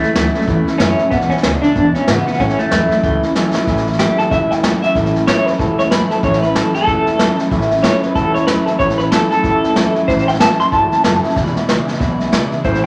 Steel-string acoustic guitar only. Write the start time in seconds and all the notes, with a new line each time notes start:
0.03 A3 C#4 E4
0.15 A2 E3 A3 C#4 E4
0.34 A3 C#4 E4
0.47 E3 A3 C#4 E4
0.67 A3 C#4 E4
0.79 A2 E3 A3 C#4 E4
0.99 A3 C#4 E4
1.11 E2 B2 E3 G#3 D4 E4
1.31 E3 G#3 D4 E4
1.43 E2 B2 E3 G#3 D4 E4
1.63 E3 G#3 D4 E4
1.75 E3 G#3 D4 E4
1.95 E3 G#3 D4 E4
2.08 E2 B2 E3 G#3 D4 E4
2.27 E3 G#3 D4 E4
2.39 A2 E3 A3 C#4 E4
2.59 A3 C#4 E4
2.71 A2 E3 A3 C#4 E4
2.91 A3 C#4 E4
3.04 E3 A3 C#4 E4
3.23 A3 C#4 E4
3.36 A2 E3 A3 C#4 E4
3.56 A3 C#4 E4
3.67 A2 E3 A3 C#4 E4
3.87 A3 C#4 E4
4.00 A2 E3 A3 C#4 E4
4.19 A3 C#4 E4
4.31 E3 A3 C#4 E4
4.51 A3 C#4 E4
4.63 A2 E3 A3 C#4 E4
4.82 A3 C#4 E4
4.95 A2 E3 A3 C#4 E4
5.15 A3 C#4 E4
5.27 A2 E3 A3 C#4 E4
5.46 A3 C#4 E4
5.58 E3 A3 C#4 E4
5.78 A3 C#4 E4
5.91 A2 E3 A3 C#4 E4
6.10 A3 C#4 E4
6.23 A2 E3 A3 C#4 E4
6.43 A3 C#4 E4
6.55 A2 E3 A3 C#4 E4
6.75 A3 C#4 E4
6.87 E3 A3 C#4 E4
7.06 A3 C#4 E4
7.20 A2 E3 A3 C#4 E4
7.38 A3 C#4 E4
7.51 A2 E3 A3 C#4 E4
7.71 A3 C#4 E4
7.84 A2 E3 A3 C#4 E4
8.03 A3 C#4 E4
8.16 E3 A3 C#4 E4
8.35 A3 C#4 E4
8.48 A2 E3 A3 C#4 E4
8.67 A3 C#4 E4
8.80 A2 E3 A3 C#4 E4
8.99 A3 C#4 E4
9.12 A2 E3 A3 C#4 E4
9.31 A3 C#4 E4
9.44 E3 A3 C#4 E4
9.63 A3 C#4 E4
9.76 A2 E3 A3 C#4 E4
9.95 A3 C#4 E4
10.08 A2 E3 A3 C#4 E4
10.27 A3 C#4 E4
10.40 A2 E3 A3 C#4 E4
10.59 A3 C#4 E4
10.71 E3 A3 C#4 E4
10.91 A3 C#4 E4
11.04 A2 E3 A3 C#4 E4
11.24 A3 C#4 E4
11.36 E2 B2 E3 G#3 D4 E4
11.55 E3 G#3 D4 E4
11.68 E2 B2 E3 G#3 D4 E4
11.87 E3 G#3 D4 E4
12.00 E3 G#3 D4 E4
12.19 E3 G#3 D4 E4
12.32 E2 B2 E3 G#3 D4 E4
12.51 E3 G#3 D4 E4
12.64 A2 E3 A3 C#4 E4